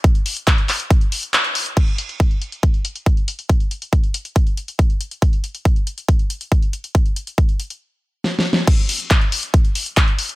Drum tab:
CC |------------------------------------------------|x-----------------------------------------------|------------------------------------------------|------------------------------------------------|
HH |x--x--o--x--x--x--o--x--x--x--o--x--x--x--o--x--|x--x--x--x--x--x--x--x--x--x--x--x--x--x--x--x--|x--x--x--x--x--x--x--x--x--x--x--x--x--x--x--x--|x--x--x--x--x--x--x--x--x--x--x--x--x--x--x--x--|
CP |------------x-----x-----------------x-----------|------------------------------------------------|------------------------------------------------|------------------------------------------------|
SD |------------------------------------------------|------------------------------------------------|------------------------------------------------|------------------------------------------------|
BD |o-----------o-----------o-----------------------|o-----------o-----------o-----------o-----------|o-----------o-----------o-----------o-----------|o-----------o-----------o-----------o-----------|

CC |------------------------------------------------|x-----------------------------------------------|
HH |x--x--x--x--x--x--x--x--------------------------|x--x--o--x--x--x--o--x--x--x--o--x--x--x--o--x--|
CP |------------------------------------------------|------------x-----------------------x-----------|
SD |------------------------------------o---o---o---|------------------------------------------------|
BD |o-----------o-----------------------------------|o-----------o-----------o-----------o-----------|